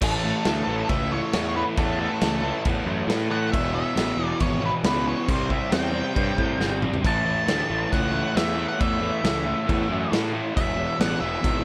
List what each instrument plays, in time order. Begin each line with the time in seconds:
0.01 picked electric bass A1, overdriven electric guitar A2 E3 A3, lead electric guitar A4, kick, crash
0.24 overdriven electric guitar A2 E3 A3
0.45 picked electric bass D2, overdriven electric guitar A2 E3 A3, snare, crash
0.67 picked electric bass A1, overdriven electric guitar A2 E3 A3
0.88 picked electric bass C#2, overdriven electric guitar A2 E3 A3, lead electric guitar E5, kick, crash
1.12 overdriven electric guitar A2 E3 A3, lead electric guitar C#5
1.33 picked electric bass E2, overdriven electric guitar A2 E3 A3, snare, crash
1.55 overdriven electric guitar A2 E3 A3, lead electric guitar B4
1.76 picked electric bass E2, overdriven electric guitar A2 E3 A3, lead electric guitar A4, kick, crash
1.98 overdriven electric guitar A2 E3 A3
2.21 picked electric bass C#2, overdriven electric guitar A2 E3 A3, snare, crash
2.42 overdriven electric guitar A2 E3 A3
2.65 picked electric bass E2, overdriven electric guitar A2 E3 A3, kick, crash
2.86 picked electric bass F#2, overdriven electric guitar A2 E3 A3
3.07 picked electric bass A2, overdriven electric guitar A2 E3 A3, snare, crash
3.29 overdriven electric guitar A2 E3 A3, lead electric guitar F#5
3.52 picked electric bass E1, overdriven electric guitar E2 B2 E3, lead electric guitar E5, kick, crash
3.72 overdriven electric guitar E2 B2 E3, lead electric guitar E5
3.95 picked electric bass A1, overdriven electric guitar E2 B2 E3, snare, crash
4.17 picked electric bass E1, overdriven electric guitar E2 B2 E3
4.26 lead electric guitar D5
4.40 picked electric bass G#1, overdriven electric guitar E2 B2 E3, lead electric guitar C#5, kick, crash
4.61 overdriven electric guitar E2 B2 E3
4.65 lead electric guitar B4
4.84 picked electric bass C#2, overdriven electric guitar E2 B2 E3, lead electric guitar B4, snare, crash
5.07 overdriven electric guitar E2 B2 E3, lead electric guitar C#5
5.28 picked electric bass C2, overdriven electric guitar C3 G3 C4, lead electric guitar C5, kick, crash
5.49 overdriven electric guitar C3 G3 C4, lead electric guitar E5, kick
5.71 picked electric bass E2, overdriven electric guitar C3 G3 C4, lead electric guitar G5, snare, crash
5.92 overdriven electric guitar C3 G3 C4
6.14 picked electric bass G2, overdriven electric guitar C3 G3 C4, kick, crash
6.37 picked electric bass A2, overdriven electric guitar C3 G3 C4, kick
6.59 picked electric bass G1, overdriven electric guitar C3 G3 C4, snare
6.82 overdriven electric guitar C3 G3 C4, mid tom
6.94 floor tom
7.03 picked electric bass A1, overdriven electric guitar A2 E3 A3, lead electric guitar A5, kick, crash
7.24 overdriven electric guitar A2 E3 A3
7.45 picked electric bass D2, overdriven electric guitar A2 E3 A3, snare, crash
7.68 picked electric bass A1, overdriven electric guitar A2 E3 A3
7.89 overdriven electric guitar A2 E3 A3, lead electric guitar F#5, kick
7.93 picked electric bass C#2, crash
8.11 overdriven electric guitar A2 E3 A3
8.35 picked electric bass E2, overdriven electric guitar A2 E3 A3, lead electric guitar E5, snare, crash
8.56 overdriven electric guitar A2 E3 A3
8.68 lead electric guitar F#5
8.79 picked electric bass E2, overdriven electric guitar A2 E3 A3, lead electric guitar E5, kick, crash
9.01 overdriven electric guitar A2 E3 A3
9.23 picked electric bass C#2, overdriven electric guitar A2 E3 A3, snare, crash
9.46 overdriven electric guitar A2 E3 A3
9.66 picked electric bass E2, overdriven electric guitar A2 E3 A3, kick, crash
9.88 picked electric bass F#2, overdriven electric guitar A2 E3 A3
10.10 overdriven electric guitar A2 E3 A3, picked electric bass A2, snare, crash
10.33 overdriven electric guitar A2 E3 A3
10.54 picked electric bass E1, overdriven electric guitar E2 B2 E3, lead electric guitar E5, kick, crash
10.76 overdriven electric guitar E2 B2 E3
11.00 picked electric bass A1, overdriven electric guitar E2 B2 E3, lead electric guitar F#5, snare, crash
11.20 picked electric bass E1, overdriven electric guitar E2 B2 E3, lead electric guitar E5
11.42 picked electric bass G#1, overdriven electric guitar E2 B2 E3, kick, crash